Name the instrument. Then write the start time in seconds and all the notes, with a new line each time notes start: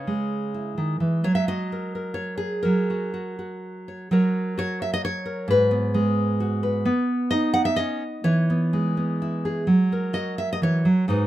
nylon-string guitar
Already playing: C#3 C#5
0.07 G#3
0.54 E4
0.78 D#3
1.00 E3
1.24 F#3 C#5
1.35 E5
1.48 F#4 D#5
1.72 A#4
1.95 A#4
2.14 C#5
2.38 G#4
2.63 F#3 A#4
2.90 F#4
3.14 F#4
3.39 F#4
3.88 C#5
4.11 F#3 F#4 A#4 C#5
4.58 F#4 C#5
4.82 E5
4.94 D#5
5.05 C#5
5.26 A#4
5.48 G#2 B4
5.71 B3
5.94 G#3
6.40 F#4
6.63 B4
6.85 B3
7.31 D#4 D#5
7.54 F#5
7.65 E5
7.76 C#4 D#5
8.24 E3 C#5
8.50 B3
8.73 G#3
8.97 B3
9.22 E4
9.45 G#4
9.67 F#3
9.92 A#4
10.13 F#4 D#5
10.38 E5
10.53 D#5
10.62 E3 C#5
10.85 F#3
11.08 G#2 D#4 F#4 B4